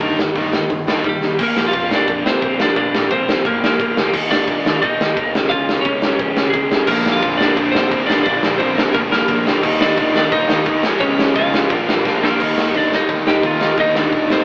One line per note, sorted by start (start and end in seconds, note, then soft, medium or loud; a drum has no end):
0.00 0.12 G1 medium
0.00 0.17 G2 medium
0.00 0.18 D#3 medium
0.00 0.18 G3 medium
0.00 0.18 A#3 medium
0.00 0.18 D#4 medium
0.00 kick loud
0.18 0.29 G1 medium
0.18 0.34 G2 medium
0.18 0.35 D#3 medium
0.18 0.35 A#3 medium
0.18 snare loud
0.35 0.58 G1 medium
0.35 0.51 G2 medium
0.35 0.52 D#3 medium
0.35 0.53 G3 medium
0.35 0.53 A#3 medium
0.35 0.53 D#4 medium
0.35 kick loud
0.35 open hi-hat medium
0.53 0.68 G2 medium
0.53 0.69 D#3 medium
0.53 0.69 A#3 medium
0.53 snare loud
0.69 0.91 G1 medium
0.69 0.85 G2 medium
0.69 0.87 D#3 medium
0.69 0.87 A#3 medium
0.69 kick loud
0.69 open hi-hat medium
0.87 1.03 G2 medium
0.87 1.03 D#3 medium
0.87 1.04 G3 loud
0.87 1.04 A#3 medium
0.87 1.04 D#4 medium
0.87 snare loud
1.04 1.15 G1 medium
1.04 1.20 G2 medium
1.04 1.20 D#3 medium
1.04 1.37 G3 medium
1.04 1.20 A#3 medium
1.04 kick loud
1.04 open hi-hat medium
1.09 1.42 G4 medium
1.20 1.32 C2 medium
1.20 1.38 G2 medium
1.20 1.37 D#3 medium
1.20 1.37 A#3 medium
1.20 snare medium
1.38 1.54 A#1 medium
1.38 1.72 A#2 medium
1.38 1.73 F3 loud
1.38 1.74 A#3 loud
1.38 1.64 A#3 medium
1.38 kick loud
1.38 crash loud
1.43 1.68 A#4 loud
1.56 1.71 A#1 medium
1.56 snare loud
1.67 1.90 F4 medium
1.67 1.93 F5 loud
1.72 1.88 F2 medium
1.72 1.91 A#2 medium
1.72 1.91 F3 medium
1.72 1.90 A#3 medium
1.72 kick loud
1.72 ride medium
1.91 2.06 A#2 medium
1.91 2.06 F3 medium
1.91 2.08 A#3 medium
1.91 2.24 D4 medium
1.91 snare loud
1.96 2.26 D5 loud
2.08 2.23 F2 medium
2.08 2.41 A#2 loud
2.08 2.41 F3 loud
2.08 2.42 A#3 loud
2.08 kick loud
2.08 ride medium
2.26 2.40 A#2 medium
2.26 2.57 C4 medium
2.26 2.61 C5 medium
2.26 snare loud
2.42 2.57 A#1 medium
2.42 2.61 A#2 medium
2.42 2.60 F3 medium
2.42 2.60 A#3 medium
2.42 kick loud
2.42 ride medium
2.60 2.75 A#1 loud
2.60 2.75 A#2 medium
2.60 2.76 F3 medium
2.60 2.77 A#3 loud
2.60 2.76 D4 medium
2.60 2.76 D5 medium
2.60 snare loud
2.76 2.91 A#1 loud
2.76 3.10 A#2 loud
2.76 3.11 F3 loud
2.76 3.12 A#3 loud
2.76 3.09 D4 medium
2.76 3.11 D5 loud
2.76 kick loud
2.76 ride medium
2.94 3.08 A#1 medium
2.94 snare loud
3.10 3.25 A#1 loud
3.10 3.27 A#2 medium
3.10 3.27 F3 medium
3.10 3.27 A#3 medium
3.10 3.44 C4 medium
3.10 3.43 C5 loud
3.10 kick loud
3.10 ride medium
3.28 3.43 A#1 medium
3.28 3.44 A#2 medium
3.28 3.44 F3 medium
3.28 3.45 A#3 loud
3.28 snare loud
3.45 3.60 G1 medium
3.45 3.79 A#2 loud
3.45 3.79 F3 loud
3.45 3.80 A#3 loud
3.45 3.62 A#3 medium
3.45 3.63 A#4 loud
3.45 kick loud
3.45 ride medium
3.63 3.78 A#1 medium
3.63 3.95 A#3 medium
3.63 3.95 A#4 medium
3.63 snare loud
3.80 3.94 A#1 loud
3.80 3.97 A#2 medium
3.80 3.97 F3 loud
3.80 3.96 A#3 loud
3.80 kick loud
3.80 ride medium
3.97 4.12 D2 medium
3.97 4.14 A#2 medium
3.97 4.13 F3 medium
3.97 4.13 A#3 loud
3.97 snare loud
4.14 4.28 D#2 loud
4.14 4.47 D#3 loud
4.14 4.48 A#3 loud
4.14 4.48 D#4 loud
4.14 kick loud
4.14 crash loud
4.31 4.46 D#2 medium
4.31 4.79 D4 medium
4.31 4.79 D5 loud
4.31 snare loud
4.47 4.63 A#2 loud
4.47 4.66 D#3 medium
4.47 4.65 A#3 medium
4.47 4.65 D#4 medium
4.47 kick loud
4.47 ride medium
4.65 4.80 D#3 loud
4.65 4.83 D#3 medium
4.65 4.83 A#3 medium
4.65 4.84 D#4 loud
4.65 snare loud
4.82 4.97 A#2 medium
4.82 5.17 D#3 loud
4.82 5.18 A#3 loud
4.82 5.31 D#4 medium
4.82 5.18 D#4 loud
4.82 5.30 D#5 loud
4.82 kick loud
4.82 ride medium
5.00 5.15 D#3 medium
5.00 snare loud
5.17 5.32 D#2 loud
5.17 5.33 D#3 medium
5.17 5.34 A#3 medium
5.17 5.34 D#4 loud
5.17 kick loud
5.17 ride medium
5.35 5.49 C#2 loud
5.35 5.53 C#3 medium
5.35 5.52 G#3 loud
5.35 5.51 C#4 loud
5.35 snare loud
5.50 5.66 C#2 loud
5.50 5.86 G#3 loud
5.50 5.86 C#4 loud
5.50 5.83 F4 medium
5.50 5.82 F5 loud
5.50 kick loud
5.50 ride medium
5.54 5.86 C#3 medium
5.69 5.84 C#2 medium
5.69 snare loud
5.81 6.48 C#5 loud
5.81 ride medium
5.85 6.00 C#2 loud
5.85 6.03 C#3 medium
5.85 6.04 G#3 loud
5.85 6.50 C#4 medium
5.85 6.05 C#4 loud
5.85 kick loud
6.02 6.18 C#2 loud
6.02 6.21 C#3 medium
6.02 6.20 G#3 medium
6.02 6.20 C#4 loud
6.02 snare loud
6.19 6.34 A#1 medium
6.19 6.54 C#3 medium
6.19 6.54 G#3 loud
6.19 6.54 C#4 loud
6.19 kick loud
6.19 ride medium
6.37 6.53 C#2 medium
6.37 snare loud
6.50 6.87 G#4 medium
6.50 kick loud
6.50 ride medium
6.54 6.69 C#2 loud
6.54 6.72 C#3 medium
6.54 6.87 G#3 medium
6.54 6.72 G#3 medium
6.54 6.73 C#4 medium
6.72 6.88 C2 medium
6.72 6.88 C#3 medium
6.72 6.89 G#3 medium
6.72 6.89 C#4 medium
6.72 snare loud
6.87 7.03 A#1 loud
6.87 7.22 A#2 medium
6.87 7.21 D3 medium
6.87 7.23 F3 loud
6.87 7.23 A#3 loud
6.87 7.14 A#3 medium
6.87 7.23 D4 medium
6.87 7.14 A#4 loud
6.87 kick loud
6.87 crash loud
7.06 7.21 A#1 medium
7.06 snare loud
7.12 7.37 F5 loud
7.17 7.40 F4 medium
7.22 7.37 F2 medium
7.22 7.42 A#2 medium
7.22 7.40 D3 medium
7.22 7.40 F3 medium
7.22 7.41 A#3 medium
7.22 7.39 D4 medium
7.22 kick loud
7.22 ride medium
7.37 7.56 A#2 loud
7.37 7.56 D3 loud
7.37 7.57 F3 medium
7.37 7.58 A#3 loud
7.37 7.57 D4 loud
7.37 7.71 D5 loud
7.37 snare loud
7.42 7.56 A#2 medium
7.42 7.73 D4 medium
7.57 7.72 F2 medium
7.57 7.90 A#2 loud
7.57 7.90 D3 loud
7.57 7.91 F3 medium
7.57 7.91 A#3 loud
7.57 7.91 D4 loud
7.57 kick loud
7.57 ride medium
7.72 7.89 A#2 medium
7.72 8.06 C5 loud
7.72 snare loud
7.76 8.07 C4 medium
7.91 8.06 A#1 medium
7.91 8.08 A#2 medium
7.91 8.07 D3 medium
7.91 8.08 F3 loud
7.91 8.08 A#3 medium
7.91 8.06 D4 medium
7.91 kick loud
7.91 ride medium
8.06 8.24 A#1 medium
8.06 8.25 A#2 medium
8.06 8.24 D3 medium
8.06 8.26 F3 medium
8.06 8.27 A#3 medium
8.06 8.26 D4 loud
8.06 8.22 D5 loud
8.06 snare loud
8.12 8.25 D4 medium
8.23 8.41 A#1 loud
8.23 8.60 A#2 loud
8.23 8.59 D3 medium
8.23 8.61 F3 loud
8.23 8.58 D4 medium
8.23 8.60 D4 medium
8.23 8.57 D5 loud
8.23 kick loud
8.23 ride medium
8.27 8.62 A#3 loud
8.43 8.58 A#1 medium
8.43 snare loud
8.58 8.75 A#1 medium
8.58 8.78 A#2 medium
8.58 8.77 D3 medium
8.58 8.78 F3 medium
8.58 8.77 A#3 medium
8.58 8.93 C4 medium
8.58 8.75 D4 loud
8.58 8.91 C5 medium
8.58 kick loud
8.58 ride medium
8.76 8.93 A#1 loud
8.76 8.95 A#2 medium
8.76 8.93 D3 medium
8.76 8.96 F3 medium
8.76 8.96 A#3 loud
8.76 8.95 D4 loud
8.76 snare loud
8.94 9.09 G1 medium
8.94 9.29 A#2 loud
8.94 9.27 D3 loud
8.94 9.30 F3 loud
8.94 9.01 A#3 medium
8.94 9.30 A#3 loud
8.94 9.29 D4 loud
8.94 8.99 A#4 loud
8.94 kick loud
8.94 ride medium
9.11 9.26 A#1 loud
9.11 9.45 A#3 medium
9.11 9.44 A#4 medium
9.11 snare loud
9.28 9.44 A#1 medium
9.28 9.46 A#2 medium
9.28 9.46 D3 medium
9.28 9.46 F3 medium
9.28 9.45 A#3 loud
9.28 9.44 D4 medium
9.28 kick loud
9.28 ride medium
9.45 9.62 D2 loud
9.45 9.63 A#2 medium
9.45 9.62 D3 medium
9.45 9.63 F3 medium
9.45 9.63 A#3 loud
9.45 9.62 D4 loud
9.45 snare loud
9.63 9.78 D#2 loud
9.63 9.97 D#3 loud
9.63 9.97 G3 medium
9.63 9.98 A#3 loud
9.63 9.99 D#4 loud
9.63 kick loud
9.63 crash loud
9.80 9.96 D#2 medium
9.80 10.13 D4 medium
9.80 10.15 D5 medium
9.80 snare loud
9.97 10.13 A#2 medium
9.97 10.16 D#3 medium
9.97 10.13 G3 medium
9.97 10.15 A#3 medium
9.97 10.15 D#4 medium
9.97 kick loud
9.97 ride medium
10.14 10.30 D#3 loud
10.14 10.32 D#3 medium
10.14 10.30 G3 loud
10.14 10.32 A#3 medium
10.14 10.33 D#4 medium
10.14 10.32 D5 medium
10.14 snare loud
10.18 10.33 D4 medium
10.32 10.47 A#2 medium
10.32 10.66 D#3 loud
10.32 10.64 G3 loud
10.32 10.67 A#3 loud
10.32 10.81 D#4 medium
10.32 10.67 D#4 loud
10.32 10.84 D#5 medium
10.32 kick loud
10.32 ride medium
10.49 10.65 D#3 loud
10.49 snare loud
10.66 10.82 D#2 loud
10.66 10.83 D#3 loud
10.66 10.83 G3 medium
10.66 10.84 A#3 medium
10.66 10.84 D#4 loud
10.66 kick loud
10.66 ride medium
10.84 10.99 C#2 loud
10.84 11.02 C#3 loud
10.84 11.00 F3 loud
10.84 11.01 G#3 loud
10.84 11.01 C#4 loud
10.84 snare loud
11.00 11.16 C#2 loud
11.00 11.37 C#3 medium
11.00 11.34 F3 medium
11.00 11.36 G#3 loud
11.00 11.36 C#4 loud
11.00 11.34 C#4 medium
11.00 11.36 C#5 loud
11.00 kick loud
11.00 ride medium
11.19 11.34 C#2 medium
11.19 snare loud
11.36 11.51 C#2 loud
11.36 11.53 C#3 medium
11.36 11.52 F3 medium
11.36 11.53 G#3 medium
11.36 11.53 C#4 medium
11.36 12.20 F4 medium
11.36 12.18 F5 loud
11.36 kick loud
11.36 ride medium
11.53 11.70 C#2 medium
11.53 11.70 C#3 medium
11.53 11.69 F3 medium
11.53 11.70 G#3 medium
11.53 11.70 C#4 loud
11.53 snare loud
11.70 11.85 A#1 medium
11.70 12.04 A#2 loud
11.70 12.04 F3 loud
11.70 12.04 A#3 loud
11.70 12.05 D4 loud
11.70 kick loud
11.70 ride medium
11.89 12.03 A#1 medium
11.89 snare loud
12.05 12.20 A#1 loud
12.05 12.21 A#2 medium
12.05 12.22 F3 medium
12.05 12.20 A#3 loud
12.05 12.21 D4 medium
12.05 kick loud
12.05 snare medium
12.22 12.38 A#1 medium
12.22 12.39 A#2 medium
12.22 12.39 F3 medium
12.22 12.38 A#3 medium
12.22 12.71 A#3 medium
12.22 12.39 D4 loud
12.22 12.72 A#4 loud
12.22 snare medium
12.39 12.53 D#2 medium
12.39 13.25 D#3 medium
12.39 13.60 G3 medium
12.39 13.26 A#3 medium
12.39 13.26 D#4 loud
12.39 kick loud
12.39 crash loud
12.39 crash medium
12.58 12.71 D#2 medium
12.58 snare loud
12.74 12.88 D#2 medium
12.74 12.92 D4 medium
12.74 12.94 D5 medium
12.74 kick loud
12.74 crash medium
12.92 13.05 D#2 medium
12.92 13.26 D#4 medium
12.92 13.26 D#5 medium
12.92 snare loud
13.09 13.22 D#2 medium
13.09 kick loud
13.09 crash medium
13.27 13.40 D#2 medium
13.27 13.42 D#3 medium
13.27 13.43 A#3 medium
13.27 13.43 D#4 medium
13.27 13.43 G4 medium
13.27 13.46 G5 loud
13.27 snare loud
13.43 13.70 D#2 medium
13.43 13.77 D#3 medium
13.43 13.78 A#3 medium
13.43 13.78 D#4 medium
13.43 13.77 F4 medium
13.43 13.80 F5 medium
13.43 kick loud
13.43 crash medium
13.60 13.76 D#3 medium
13.60 13.77 G3 medium
13.60 13.77 A#3 medium
13.60 13.77 D#4 medium
13.60 snare loud
13.77 14.05 D#2 loud
13.77 14.44 D#3 medium
13.77 14.44 G3 medium
13.77 14.44 A#3 loud
13.77 13.95 D#4 medium
13.77 14.44 D#4 loud
13.77 13.98 D#5 loud
13.77 kick loud
13.77 crash medium
13.95 14.29 D4 medium
13.95 14.32 D5 medium
13.95 snare loud
14.12 14.26 A#2 medium
14.12 kick loud
14.12 crash medium
14.30 14.44 G2 medium
14.30 14.44 C4 medium
14.30 14.44 C5 medium
14.30 snare loud